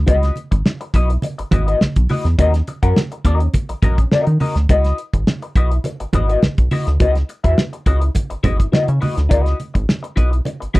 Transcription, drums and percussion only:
0.07 kick, closed hi-hat, muted conga
0.23 snare, closed hi-hat
0.36 closed hi-hat, muted conga
0.52 kick, closed hi-hat
0.66 snare, high conga
0.81 closed hi-hat
0.94 kick, closed hi-hat
1.10 closed hi-hat
1.22 closed hi-hat, muted conga
1.39 closed hi-hat
1.51 kick, closed hi-hat, low conga
1.68 closed hi-hat
1.81 snare, high conga
1.96 kick, closed hi-hat
2.09 open hi-hat, high conga
2.25 snare, closed hi-hat
2.39 kick, closed hi-hat, muted conga
2.54 snare, closed hi-hat
2.67 closed hi-hat, muted conga
2.83 kick, closed hi-hat
2.96 snare, high conga
3.12 closed hi-hat
3.25 kick, closed hi-hat
3.40 closed hi-hat
3.54 kick, closed hi-hat, muted conga
3.69 closed hi-hat
3.83 kick, closed hi-hat, low conga
3.98 kick, closed hi-hat
4.12 snare, high conga
4.27 closed hi-hat
4.40 open hi-hat, high conga
4.56 snare, closed hi-hat
4.69 kick, closed hi-hat, muted conga
4.84 snare, closed hi-hat
4.98 closed hi-hat
5.13 kick, closed hi-hat
5.27 snare, high conga
5.42 closed hi-hat
5.55 kick, closed hi-hat
5.71 closed hi-hat
5.84 closed hi-hat, muted conga
6.00 closed hi-hat
6.13 kick, closed hi-hat, low conga
6.29 closed hi-hat
6.43 snare, high conga
6.58 kick, closed hi-hat
6.71 open hi-hat, high conga
6.87 snare, closed hi-hat
7.00 kick, closed hi-hat, muted conga
7.15 snare, closed hi-hat
7.29 closed hi-hat
7.44 kick, closed hi-hat
7.58 snare, high conga
7.73 closed hi-hat
7.86 kick, closed hi-hat
8.02 closed hi-hat
8.15 kick, closed hi-hat, muted conga
8.30 closed hi-hat
8.44 kick, closed hi-hat, low conga
8.60 kick, closed hi-hat
8.73 snare, high conga
8.88 closed hi-hat
9.02 open hi-hat, high conga
9.17 snare, closed hi-hat
9.31 kick, closed hi-hat, muted conga
9.46 snare, closed hi-hat
9.60 closed hi-hat, muted conga
9.75 kick, closed hi-hat
9.89 snare, high conga
10.04 closed hi-hat
10.17 kick, closed hi-hat
10.33 closed hi-hat
10.45 closed hi-hat, muted conga
10.62 closed hi-hat
10.74 kick, closed hi-hat, low conga

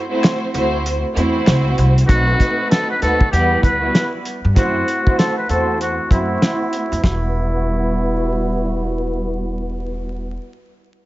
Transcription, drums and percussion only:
0.23 finger snap, snare, closed hi-hat
0.54 closed hi-hat
0.86 closed hi-hat
1.17 closed hi-hat
1.46 finger snap, snare, closed hi-hat
1.78 closed hi-hat
1.98 closed hi-hat
2.09 kick, closed hi-hat
2.40 kick, closed hi-hat
2.71 snare, closed hi-hat
3.02 closed hi-hat
3.21 kick
3.33 closed hi-hat
3.63 kick, closed hi-hat
3.95 snare, closed hi-hat
4.25 closed hi-hat
4.56 kick, closed hi-hat
4.88 closed hi-hat
5.07 kick
5.19 snare, closed hi-hat
5.49 closed hi-hat
5.81 closed hi-hat
6.11 kick, closed hi-hat
6.42 snare, closed hi-hat
6.73 closed hi-hat
6.93 closed hi-hat
7.04 kick, snare

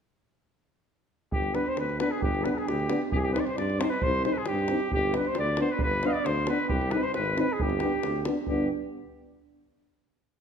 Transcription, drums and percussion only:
1.32 davul low
1.43 davul high
1.55 davul high
1.66 davul high
1.77 davul high
1.89 davul high
2.00 davul high
2.22 davul low
2.35 davul high
2.46 davul high
2.58 davul high
2.68 davul high
2.80 davul high
2.90 davul high
3.12 davul low
3.25 davul high
3.36 davul high
3.47 davul high
3.58 davul high
3.70 davul high
3.81 davul high
4.02 davul low
4.15 davul high
4.25 davul high
4.36 davul high
4.46 davul high
4.59 davul high
4.68 davul high
4.80 davul high
4.92 davul low
5.03 davul high
5.14 davul high
5.25 davul high
5.35 davul high
5.47 davul high
5.57 davul high
5.79 davul low
5.91 davul high
6.03 davul high
6.14 davul high
6.26 davul high
6.37 davul high
6.47 davul high
6.69 davul low
6.81 davul high
6.91 davul high
7.04 davul high
7.14 davul high
7.25 davul high
7.38 davul high
7.60 davul low
7.70 davul high
7.80 davul high
8.03 davul high
8.25 davul high
8.47 davul low

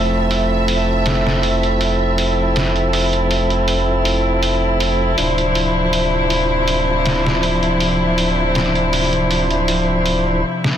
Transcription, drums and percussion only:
0.31 open hi-hat
0.68 open hi-hat
1.06 snare, open hi-hat
1.27 snare
1.43 open hi-hat
1.63 closed hi-hat
1.81 open hi-hat
2.18 open hi-hat
2.56 snare, open hi-hat
2.76 closed hi-hat
2.93 open hi-hat
3.13 closed hi-hat
3.31 open hi-hat
3.50 closed hi-hat
3.68 open hi-hat
4.05 open hi-hat
4.43 open hi-hat
4.80 open hi-hat
5.18 open hi-hat
5.38 closed hi-hat
5.55 open hi-hat
5.93 open hi-hat
6.30 open hi-hat
6.68 open hi-hat
7.06 snare, open hi-hat
7.26 snare
7.43 open hi-hat
7.63 closed hi-hat
7.80 open hi-hat
8.18 open hi-hat
8.55 snare, open hi-hat
8.75 closed hi-hat
8.93 open hi-hat
9.13 closed hi-hat
9.31 open hi-hat
9.51 closed hi-hat
9.68 open hi-hat
10.06 open hi-hat
10.64 snare

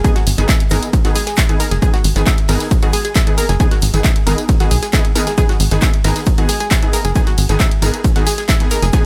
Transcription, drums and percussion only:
0.04 kick, closed hi-hat, ride, tambourine, shaker
0.16 snare, closed hi-hat, ride
0.27 open hi-hat, ride, tambourine, shaker
0.38 snare, closed hi-hat, ride, tambourine
0.48 kick, snare, clap, closed hi-hat, ride, tambourine, shaker
0.60 closed hi-hat, ride
0.70 open hi-hat, ride, tambourine, shaker
0.83 closed hi-hat, ride, tambourine
0.93 kick, closed hi-hat, ride, tambourine, shaker
1.05 snare, closed hi-hat, ride
1.15 open hi-hat, ride, tambourine, shaker
1.27 snare, closed hi-hat, ride, tambourine
1.37 kick, snare, clap, closed hi-hat, ride, tambourine, shaker
1.49 closed hi-hat, ride
1.60 open hi-hat, ride, tambourine, shaker
1.71 snare, closed hi-hat, ride, tambourine
1.82 kick, closed hi-hat, ride, tambourine, shaker
1.94 snare, closed hi-hat, ride
2.04 open hi-hat, ride, tambourine, shaker
2.16 snare, closed hi-hat, ride, tambourine
2.26 kick, snare, clap, closed hi-hat, ride, tambourine, shaker
2.38 closed hi-hat, ride
2.48 open hi-hat, ride, tambourine
2.60 snare, closed hi-hat, ride, tambourine
2.71 kick, closed hi-hat, ride, tambourine, shaker
2.83 closed hi-hat, ride
2.93 open hi-hat, ride, tambourine, shaker
3.05 closed hi-hat, ride, tambourine
3.15 kick, snare, clap, closed hi-hat, ride, tambourine, shaker
3.27 closed hi-hat, ride
3.38 open hi-hat, ride, tambourine, shaker
3.49 snare, closed hi-hat, ride, tambourine
3.60 kick, closed hi-hat, ride, tambourine, shaker
3.71 snare, closed hi-hat, ride
3.82 open hi-hat, ride, tambourine, shaker
3.93 snare, closed hi-hat, ride, tambourine
4.03 kick, snare, clap, closed hi-hat, ride, tambourine, shaker
4.16 closed hi-hat, ride
4.27 open hi-hat, ride, tambourine, shaker
4.38 closed hi-hat, ride, tambourine
4.49 kick, closed hi-hat, ride, tambourine, shaker
4.60 snare, closed hi-hat, ride
4.71 open hi-hat, ride, tambourine, shaker
4.83 snare, closed hi-hat, ride, tambourine
4.93 kick, snare, clap, closed hi-hat, ride, tambourine, shaker
5.05 closed hi-hat, ride
5.16 open hi-hat, ride, tambourine, shaker
5.27 snare, closed hi-hat, ride, tambourine
5.38 kick, closed hi-hat, ride, tambourine, shaker
5.49 snare, closed hi-hat, ride
5.60 open hi-hat, ride, tambourine, shaker
5.71 snare, closed hi-hat, ride, tambourine
5.81 kick, snare, clap, closed hi-hat, ride, tambourine, shaker
5.94 closed hi-hat, ride
6.04 open hi-hat, ride, tambourine
6.16 snare, closed hi-hat, ride, tambourine
6.26 kick, closed hi-hat, ride, tambourine, shaker
6.38 closed hi-hat, ride
6.49 open hi-hat, ride, tambourine, shaker
6.60 closed hi-hat, ride, tambourine
6.71 kick, snare, clap, closed hi-hat, ride, tambourine, shaker
6.83 closed hi-hat, ride
6.93 open hi-hat, ride, tambourine, shaker
7.04 snare, closed hi-hat, ride, tambourine
7.15 kick, closed hi-hat, ride, tambourine, shaker
7.27 snare, closed hi-hat, ride
7.38 open hi-hat, ride, tambourine, shaker
7.49 snare, closed hi-hat, ride, tambourine
7.60 kick, snare, clap, closed hi-hat, ride, tambourine, shaker
7.71 closed hi-hat, ride
7.82 open hi-hat, ride, tambourine, shaker
7.94 closed hi-hat, ride, tambourine
8.04 kick, closed hi-hat, ride, tambourine, shaker
8.16 snare, closed hi-hat, ride
8.26 open hi-hat, ride, tambourine, shaker
8.38 snare, closed hi-hat, ride, tambourine
8.48 kick, snare, clap, closed hi-hat, ride, tambourine, shaker
8.60 closed hi-hat, ride
8.71 open hi-hat, ride, tambourine, shaker
8.82 snare, closed hi-hat, ride, tambourine
8.93 kick, closed hi-hat, ride, tambourine, shaker

